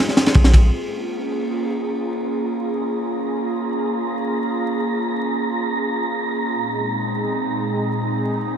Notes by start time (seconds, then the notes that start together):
Already playing: G#3 C4 F4 G#4
0.09 snare
0.17 snare, ride
0.26 snare, ride
0.34 A#1, kick, ride
0.44 snare, ride
0.54 kick, ride
0.72 A#3 C#4 F4 G#4 A#5
6.54 A#2 G#3 C4 D#4 G#4